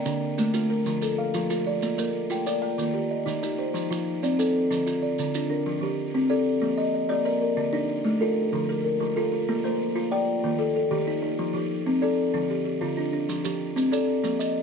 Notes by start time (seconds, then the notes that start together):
Already playing: D3 G5
0.05 D3 D4, maracas
0.38 A3 A#3, maracas
0.54 A3 F4, maracas
0.70 A#4
0.85 D3 F3, maracas
1.02 A4, maracas
1.18 F5
1.34 F3 F4, maracas
1.50 F4 A4, maracas
1.66 F4 D5
1.82 A#3, maracas
1.98 A#3 A#4, maracas
2.30 F4 G5, maracas
2.46 F4 D5, maracas
2.62 G5
2.78 D#3 A#3, maracas
2.94 G4
3.11 D#5
3.26 D#3 D#4, maracas
3.43 D#4 G4, maracas
3.59 D#4 C5
3.74 F3, maracas
3.90 F3 F4, maracas
4.23 C4 D5, maracas
4.39 C4 A4, maracas
4.71 D3 F3, maracas
4.87 F4, maracas
5.02 D5
5.19 D3, maracas
5.35 D4 F4, maracas
5.50 D4 A#4
5.66 F3
5.81 F3 G4
6.14 C4
6.30 C4 A4 D5
6.62 F3 A#3
6.77 D#5
6.94 D#5
7.09 A#3 D5
7.25 A#4 D5
7.42 A#4
7.57 D3
7.73 D4 D#4
8.05 A3
8.21 F4 A4 A#4
8.52 D3 F3
8.69 A#4
8.84 A#4
9.00 F3
9.16 F4 A4
9.32 F4
9.49 A#3
9.64 A#3 C5
9.96 F4
10.11 F4 D5 G5
10.44 D#3 A#3
10.59 A4
10.76 A4
10.91 D#3 G4
11.07 D#4 G4
11.22 D#4
11.39 F3
11.54 F3 G4
11.86 C4
12.02 C4 A4 D5
12.34 D3 F3
12.50 G4
12.65 G4
12.81 D3 F4
12.97 D4 F4
13.13 D4
13.29 F3, maracas
13.44 F3 G4, maracas
13.76 C4, maracas
13.92 C4 A4 D5, maracas
14.24 F3 A#3, maracas
14.39 D#5, maracas